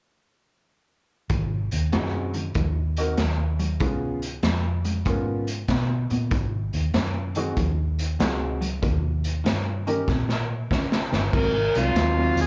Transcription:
1.30 G#1 G#2 D#3, kick, closed hi-hat
1.71 D#2, closed hi-hat
1.92 F#2 G#2 D#3 C4 D#4 F#4 G#4, snare, closed hi-hat
2.33 G#2 D#3, closed hi-hat
2.54 D#2 G#2 F3, kick, closed hi-hat
2.97 C4 D#4 F#4 A#4, closed hi-hat
3.17 D#2 G#2 F#3, snare, closed hi-hat
3.59 G#2 F#3, closed hi-hat
3.80 C#2 C#3 G#3 B3 C#4 F4 G#4, kick, closed hi-hat
4.22 closed hi-hat
4.43 F2 C#3 G#3, snare, closed hi-hat
4.85 C#3 G#3, closed hi-hat
5.05 G#2 C#3 A#3 B3 C#4 F4 A#4, kick, closed hi-hat
5.47 closed hi-hat
5.68 B2 C#3 B3, kick, snare, closed hi-hat
6.10 A#2 C#3 B3, closed hi-hat
6.31 G#1 G#2 D#3, kick, closed hi-hat
6.73 D#2, closed hi-hat
6.94 F#2 G#2 D#3, snare, closed hi-hat
7.35 G#2 D#3 C4 D#4 F#4 G#4, closed hi-hat
7.57 D#2 G#2 F3, kick, closed hi-hat
7.99 closed hi-hat
8.19 C#2 G#2 F#3 C4 D#4 F#4 G#4, snare, closed hi-hat
8.61 G#2 F#3, closed hi-hat
8.82 D#2 D#3 A#3, kick, closed hi-hat
9.24 closed hi-hat
9.44 G2 D#3 A#3, snare, closed hi-hat
9.87 D#3 A#3 C#4 D#4 G4 A#4, closed hi-hat
10.08 A#2 D#3 C4, kick, snare
10.29 snare
10.71 C#3 D#3 C#4, kick, snare
10.92 snare
11.13 G1 D#3 C#4, snare
11.33 G#1 G#2 F#3 C4 D#4 A#4, kick, crash
11.55 muted clean electric guitar stroke
11.75 C2 G#2 F#3 C4 D#4 F4, closed hi-hat
11.95 D#2 G#2 F#3 C4 D#4, snare, closed hi-hat
12.17 G#2 F#3 C4 D#4
12.36 D#2, closed hi-hat
12.41 G#4

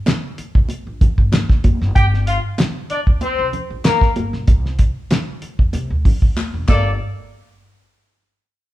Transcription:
0.06 snare, clap, closed hi-hat, high conga
0.38 muted upright bass stroke, closed hi-hat
0.55 C2, kick
0.69 closed hi-hat, muted conga
0.87 A#1
1.01 kick, closed hi-hat, low conga
1.18 G1, kick
1.32 snare, clap, closed hi-hat, high conga
1.49 G1, kick, snare
1.64 F1, kick, closed hi-hat, high conga
1.81 F#1, snare
1.96 G1 G4 G5, kick, closed hi-hat, muted conga
2.14 snare
2.27 F4 F5, closed hi-hat
2.58 snare, clap, closed hi-hat, high conga
2.90 D4 D5, muted upright bass stroke, closed hi-hat
3.07 D2, kick
3.21 C4 C5, closed hi-hat, muted conga
3.39 C2
3.53 closed hi-hat, low conga
3.70 A#1
3.84 A#3 A#4, snare, clap, closed hi-hat, high conga
4.01 kick, snare
4.16 G1, closed hi-hat, high conga
4.33 B1, snare
4.48 C2, kick, closed hi-hat, muted conga
4.66 snare
4.79 kick, closed hi-hat
5.11 snare, clap, closed hi-hat, high conga
5.42 muted upright bass stroke, closed hi-hat
5.59 E2, kick
5.73 C3, closed hi-hat, muted conga
5.90 D2
6.05 kick, open hi-hat, low conga
6.22 D2, kick
6.37 clap, high conga
6.54 E1
6.68 G1 A#3 A4 D5, kick, clap, crash, muted conga

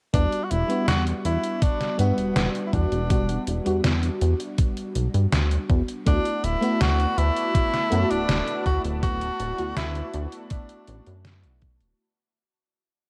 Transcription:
0.13 E2 G3 B3 D4 F#4, kick, closed hi-hat
0.32 closed hi-hat
0.44 F#4
0.51 E1 E4, closed hi-hat
0.68 G3 B3 D4 F#4, closed hi-hat
0.88 E2 F#4, snare, closed hi-hat
1.07 closed hi-hat
1.25 E2 E4, closed hi-hat
1.44 closed hi-hat
1.62 D4, kick, closed hi-hat
1.81 snare, closed hi-hat
1.98 G2 G3 B3 D4 F#4, closed hi-hat
2.18 E1, closed hi-hat
2.36 E1 B3, snare, closed hi-hat
2.55 closed hi-hat
2.67 E4
2.73 E2 D4, kick, closed hi-hat
2.92 E1, closed hi-hat
3.09 G3 B3 D4 F#4, kick, closed hi-hat
3.29 closed hi-hat
3.47 E1, closed hi-hat
3.65 E2 G3 B3 D4 F#4, closed hi-hat
3.84 E2, snare, closed hi-hat
4.03 closed hi-hat
4.21 E2, closed hi-hat
4.40 closed hi-hat
4.58 kick, closed hi-hat
4.77 closed hi-hat
4.95 B1, closed hi-hat
5.14 G2, closed hi-hat
5.32 D2, snare, closed hi-hat
5.51 closed hi-hat
5.70 E2, kick, closed hi-hat
5.88 closed hi-hat
6.06 D2 A3 B3 D4 E4 F#4 B4 D5 A5, kick, closed hi-hat
6.25 closed hi-hat
6.44 D1 E4, closed hi-hat
6.61 A3 B3 E4 F#4, closed hi-hat
6.81 D2 F#4, snare, closed hi-hat
7.00 closed hi-hat
7.18 D2 E4, closed hi-hat
7.36 closed hi-hat
7.55 kick, closed hi-hat
7.74 snare, closed hi-hat
7.90 F#2 A3 B3 E4 F#4, closed hi-hat
8.11 D1 D4, closed hi-hat
8.29 D1, snare, closed hi-hat
8.47 closed hi-hat
8.66 D2 F#4, kick, closed hi-hat
8.85 D1, closed hi-hat
9.02 A3 B3 E4 F#4, kick, closed hi-hat
9.21 closed hi-hat
9.40 D1, closed hi-hat
9.58 D2 A3 B3 E4 F#4, closed hi-hat
9.77 D2 E4, snare, closed hi-hat
9.95 closed hi-hat
10.14 D2, closed hi-hat
10.32 closed hi-hat
10.50 D4, kick, closed hi-hat
10.69 closed hi-hat
10.87 A1, closed hi-hat
11.06 F#2, closed hi-hat
11.25 snare, closed hi-hat
11.43 B1, closed hi-hat
11.62 kick, closed hi-hat
11.81 D1, closed hi-hat

